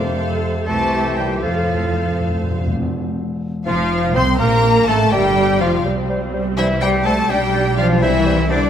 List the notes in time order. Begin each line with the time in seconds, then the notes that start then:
Already playing: F2 C3 A4 C5 F5
0.66 C2 C3 E3 A3 G4 A4 C5 E5 A5
1.17 A#2 G3 G4 G5
1.42 F2 A2 F3 F4 A4 C5 F5
1.51 F2
1.59 F2
1.66 F2
1.74 F2
1.82 F2
1.90 F2
1.98 F2
2.05 F2
2.13 F2
2.20 F2
2.28 F2
2.36 F2
2.44 F2
2.51 F2
2.58 F2
2.67 F2
2.74 F2
2.82 F2
3.66 F1 F3 F4 F5
4.14 C2 C4 C5 C6
4.38 A#1 A#3 A#4 A#5
4.86 A1 A3 A4 A5
5.11 G1 G3 G4 G5
5.60 F1 F3 F4 F5
5.85 C2 G3 C4 C5
6.09 G3 C5
6.33 G3 C5
6.57 E3 G3 E4 C5 E5
6.81 G3 G4 C5 G5
7.05 G3 A3 A4 C5 A5
7.29 B1 G3 D4 G4 D5 G5
7.54 G3 D5
7.77 F3 G3 F4 D5 F5
8.01 C2 E3 G3 C4 E4 C5 E5
8.26 G3 C5
8.49 D3 G3 D4 C5 D5